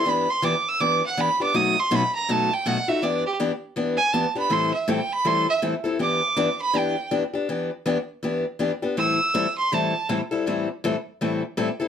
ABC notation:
X:1
M:4/4
L:1/16
Q:"Swing" 1/4=161
K:Em
V:1 name="Violin"
b2 c'2 d'2 e'2 d'2 f2 b2 d'2 | ^d'2 c'2 b2 ^a2 =a2 g2 f2 e2 | d2 G2 z6 ^g2 a2 b2 | c'2 e2 g2 b2 c'2 e2 z4 |
d'6 b2 g4 z4 | z16 | e'6 c'2 a4 z4 | z16 |]
V:2 name="Steel-string acoustic guitar"
[E,B,DG]2 z2 [E,B,DG] z3 [E,B,DG]2 z2 [E,B,DG] z [B,DG]2 | [B,,F,A,^DF]2 z2 [B,,F,A,DF] z3 [B,,F,A,DF]2 z2 [B,,F,A,DF] z [A,DF]2 | [E,B,DG]2 z2 [E,B,DG] z3 [E,B,DG]2 z2 [E,B,DG] z [B,DG]2 | [A,,E,G,CEA]2 z2 [A,,E,G,CEA] z3 [A,,E,G,CEA]2 z2 [A,,E,G,CEA] z [G,CEA]2 |
[E,B,DG]2 z2 [E,B,DG] z3 [E,B,DG]2 z2 [E,B,DG] z [B,DG]2 | [E,B,DG]2 z2 [E,B,DG] z3 [E,B,DG]2 z2 [E,B,DG] z [B,DG]2 | [A,,E,G,CEA]2 z2 [A,,E,G,CEA] z3 [A,,E,G,CEA]2 z2 [A,,E,G,CEA] z [G,CEA]2 | [A,,E,G,CEA]2 z2 [A,,E,G,CEA] z3 [A,,E,G,CEA]2 z2 [A,,E,G,CEA] z [G,CEA]2 |]